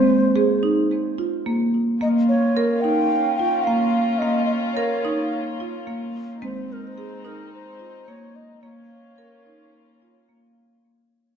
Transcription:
0.00 1.97 G#3 medium
0.00 0.36 C4 medium
0.00 0.62 C5 medium
0.36 0.63 G#4 medium
0.63 1.18 D#4 medium
1.18 1.46 F4 soft
1.46 2.00 A#3 medium
2.00 2.56 A#3 medium
2.00 6.39 A#3 medium
2.00 6.39 C#4 soft
2.00 6.38 F4 medium
2.00 2.08 D#5 medium
2.29 2.82 C#5 medium
2.57 2.84 A#4 medium
2.81 3.39 D#4 soft
2.81 3.35 G5 medium
3.36 3.67 F4 medium
3.36 3.65 G5 medium
3.64 4.21 A#3 medium
3.64 4.20 F5 medium
4.19 4.77 A#3 medium
4.19 4.45 D#5 medium
4.45 4.52 D#5 medium
4.73 5.04 A#4 medium
4.73 5.54 C#5 medium
5.05 5.60 D#4 medium
5.60 5.87 F4 medium
5.87 6.42 A#3 medium
6.42 8.59 G#3 medium
6.42 8.61 G#3 medium
6.42 6.97 C4 medium
6.42 8.61 C4 medium
6.42 8.61 D#4 medium
6.42 6.74 C5 medium
6.73 6.89 A#4 medium
6.87 7.28 C5 medium
6.98 7.25 G#4 medium
7.25 7.80 D#4 medium
7.25 7.53 A#4 medium
7.54 8.10 C5 medium
7.80 8.08 F4 medium
8.08 8.62 A#3 medium
8.08 8.37 C#5 medium
8.36 8.64 D#5 medium
8.63 9.18 A#3 medium
8.63 10.82 A#3 medium
8.63 10.82 C#4 soft
8.63 10.82 F4 medium
8.63 10.29 C#5 medium
9.18 9.46 A#4 medium
9.46 10.01 D#4 medium
10.02 10.29 F4 soft
10.29 10.84 A#3 medium

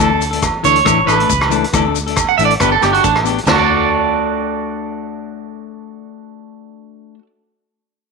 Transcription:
0.00 0.49 D2 medium
0.00 0.10 A3 medium
0.00 0.10 D4 medium
0.00 0.38 A4 medium
0.00 0.09 A4 medium
0.00 low agogo medium
0.10 0.24 A3 soft
0.10 0.23 D4 soft
0.10 0.22 A4 soft
0.21 closed hi-hat soft
0.21 maracas medium
0.31 0.45 A3 soft
0.31 0.44 D4 soft
0.31 0.43 A4 soft
0.31 closed hi-hat medium
0.42 kick medium
0.42 cross-stick medium
0.42 closed hi-hat soft
0.42 low agogo medium
0.42 maracas medium
0.63 0.81 D2 medium
0.63 0.77 E3 soft
0.63 0.77 A3 soft
0.63 0.78 D4 medium
0.63 0.78 A4 medium
0.63 1.04 C#5 medium
0.63 closed hi-hat soft
0.63 maracas medium
0.76 closed hi-hat soft
0.84 1.03 A1 medium
0.84 0.98 E3 medium
0.84 0.99 A3 medium
0.84 0.99 D4 medium
0.84 1.00 A4 medium
0.84 kick medium
0.84 cross-stick medium
0.84 closed hi-hat soft
0.84 low agogo medium
0.84 maracas loud
1.05 1.24 A1 medium
1.05 1.18 E3 medium
1.05 1.18 A3 medium
1.05 1.19 D4 medium
1.05 1.17 A4 medium
1.05 1.68 B4 medium
1.05 cross-stick medium
1.05 closed hi-hat soft
1.05 low agogo medium
1.05 maracas medium
1.18 1.32 A3 soft
1.18 1.31 D4 soft
1.18 1.30 A4 soft
1.18 closed hi-hat soft
1.29 1.63 C#2 medium
1.29 kick medium
1.29 closed hi-hat soft
1.29 maracas medium
1.41 cross-stick medium
1.41 low agogo medium
1.49 1.63 E3 medium
1.49 1.64 A3 medium
1.49 1.65 D4 medium
1.49 1.65 A4 medium
1.49 closed hi-hat soft
1.49 maracas medium
1.64 closed hi-hat soft
1.73 2.24 D2 medium
1.73 1.84 E3 medium
1.73 1.85 A3 medium
1.73 1.85 D4 medium
1.73 1.84 A4 medium
1.73 kick medium
1.73 cross-stick medium
1.73 closed hi-hat soft
1.73 low agogo medium
1.73 maracas medium
1.85 1.98 A3 soft
1.85 1.98 D4 soft
1.85 1.97 A4 medium
1.95 closed hi-hat soft
1.95 maracas medium
2.07 2.20 A3 soft
2.07 2.19 D4 soft
2.07 2.18 A4 soft
2.07 closed hi-hat soft
2.16 kick medium
2.16 cross-stick medium
2.16 closed hi-hat soft
2.16 low agogo medium
2.16 maracas medium
2.29 2.37 F#5 medium
2.38 2.55 A1 medium
2.38 2.52 E3 soft
2.38 2.52 A3 medium
2.38 2.53 D4 medium
2.38 2.44 E5 medium
2.38 closed hi-hat soft
2.38 maracas medium
2.42 2.53 A4 soft
2.42 2.52 D5 medium
2.50 closed hi-hat medium
2.60 2.77 G1 medium
2.60 2.74 B3 medium
2.60 2.74 D4 medium
2.60 2.75 G4 medium
2.60 2.71 B4 medium
2.60 kick medium
2.60 cross-stick medium
2.60 closed hi-hat medium
2.60 low agogo medium
2.60 maracas medium
2.72 2.81 A4 medium
2.81 2.99 G1 medium
2.81 2.93 B3 soft
2.81 2.94 D4 medium
2.81 2.93 G4 medium
2.81 2.91 G4 medium
2.81 cross-stick medium
2.81 closed hi-hat soft
2.81 low agogo soft
2.81 maracas medium
2.92 3.06 D4 soft
2.92 3.02 F#4 medium
2.92 3.04 G4 soft
2.92 closed hi-hat soft
3.04 3.38 A1 medium
3.04 3.16 D4 medium
3.04 kick medium
3.04 closed hi-hat soft
3.04 maracas medium
3.16 cross-stick medium
3.16 low agogo medium
3.24 3.38 B3 medium
3.24 3.39 D4 medium
3.24 3.39 G4 medium
3.24 closed hi-hat soft
3.24 maracas medium
3.38 closed hi-hat soft
3.44 7.13 D2 medium
3.44 7.19 A3 medium
3.44 7.14 D4 medium
3.44 muted clean electric guitar stroke medium
3.44 low agogo medium
3.44 maracas medium
3.48 7.22 D4 medium
3.48 7.18 F#4 medium
3.48 snare medium
3.48 floor tom medium
3.48 crash medium
3.53 7.24 F#4 medium
3.53 7.22 A4 medium
3.59 7.26 D5 medium

